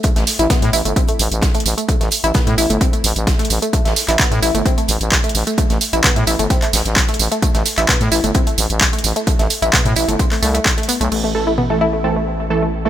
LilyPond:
<<
  \new Staff \with { instrumentName = "Supersaw synth" } { \time 4/4 \key a \minor \tempo 4 = 130 r1 | r1 | r1 | r1 |
r1 | r1 | r8 <e a a'>16 r8 <e a a'>16 r8 <e a a'>16 r8. <e a a'>16 r8 <e a a'>16 | }
  \new Staff \with { instrumentName = "Synth arpeggio sound" } { \time 4/4 \key a \minor a16 a16 r16 e'16 b16 a16 e'16 a16 c'16 a16 r8. a16 r16 a16 | a16 a16 r16 e'16 b16 a16 e'16 a16 c'16 a16 r8. a16 r16 a16 | a16 a16 r16 e'16 b16 a16 e'16 a16 c'16 a16 r8. a16 r16 a16 | a16 a16 r16 e'16 b16 a16 e'16 a16 c'16 a16 r8. a16 r16 a16 |
a16 a16 r16 e'16 b16 a16 e'16 a16 c'16 a16 r8. a16 r16 a16 | a16 a16 r16 e'16 b16 a16 e'16 a16 c'16 a16 a16 a16 r16 a16 b16 a16 | a16 a16 r16 e'16 b16 a16 e'16 a16 c'16 a16 r8. a16 r16 a16 | }
  \new Staff \with { instrumentName = "FM bass" } { \clef bass \time 4/4 \key a \minor r16 a,,16 r16 a,,16 r16 a,16 a,,16 g,,16 r8 a,,16 a,,16 r8 a,,16 r16 | r16 a,,16 r16 a,,16 r16 a,16 a,,16 g,,16 r8 a,,16 a,,16 r8 a,,16 r16 | r16 a,,16 r16 a,,16 r16 a,16 a,,16 g,,16 r8 a,,16 a,,16 r8 a,,16 r16 | r16 a,,16 r16 a,,16 r16 a,16 a,,16 g,,16 r8 a,,16 a,,16 r8 a,,16 r16 |
r16 a,,16 r16 a,,16 r16 a,16 a,,16 g,,16 r8 a,,16 a,,16 r8 a,,16 r16 | r16 a,,16 r16 a,,16 r16 a,16 a,,16 g,,16 r8 c,16 r4 b,,16 | a,,1 | }
  \new DrumStaff \with { instrumentName = "Drums" } \drummode { \time 4/4 <hh bd tamb>16 <hh sn tamb>16 <hh hho sn tamb>16 <hh tamb>16 <hh bd sn tamb toml>16 <hh sn tamb>16 <hh hho tamb>16 <hh tamb>16 <hh bd tamb>16 <hh tamb>16 <hh hho tamb>16 <hh tamb>16 <hh bd sn tamb>16 <hh tamb>32 hh32 <hh hho tamb>16 <hh tamb>16 | <hh bd tamb>16 <hh sn tamb>16 <hh hho tamb>16 <hh tamb>16 <hh bd sn tamb toml>16 <hh tamb>16 <hh hho tamb>16 <hh tamb>16 <hh bd tamb>16 <hh tamb>16 <hh hho tamb>16 <hh tamb>16 <hh bd sn tamb>16 <hh sn tamb>32 hh32 <hh hho tamb>16 <hh tamb>16 | <hh bd tamb>16 <hh sn tamb>16 <hh hho sn tamb>16 <hc hh tamb>16 <hc hh bd sn tamb toml>16 <hh sn tamb>16 <hh hho tamb>16 <hh tamb>16 <hh bd tamb>16 <hh tamb>16 <hh hho tamb>16 <hh tamb>16 <hc hh bd sn tamb>16 <hh tamb>32 hh32 <hh hho tamb>16 <hh tamb>16 | <hh bd tamb>16 <hh sn tamb>16 <hh hho tamb>16 <hh tamb>16 <hc hh bd sn tamb toml>16 <hh tamb>16 <hh hho tamb>16 <hh tamb>16 <hh bd sn tamb>16 <hc hh tamb>16 <hh hho sn tamb>16 <hh sn tamb>16 <hc hh bd sn tamb>16 <hh sn tamb>32 hh32 <hh hho tamb>16 <hh tamb>16 |
<hh bd tamb>16 <hh sn tamb>16 <hh hho sn tamb>16 <hc hh tamb>16 <hc hh bd sn tamb toml>16 <hh sn tamb>16 <hh hho tamb>16 <hh tamb>16 <hh bd tamb>16 <hh tamb>16 <hh hho tamb>16 <hh tamb>16 <hc hh bd sn tamb>16 <hh tamb>32 hh32 <hh hho tamb>16 <hh tamb>16 | <hh bd tamb>16 <hh sn tamb>16 <hh hho tamb>16 <hh tamb>16 <hc hh bd sn tamb toml>16 <hh tamb toml>16 <hh hho tamb>16 <hh tamb>16 <hh bd tamb>16 <hc hho tamb>16 <hho tamb>16 <hh tamb>16 <hc hh bd sn tamb>16 <hh sn tamb>32 hh32 <hh hho tamb>16 <hh tamb>16 | cymc4 toml4 r4 r4 | }
>>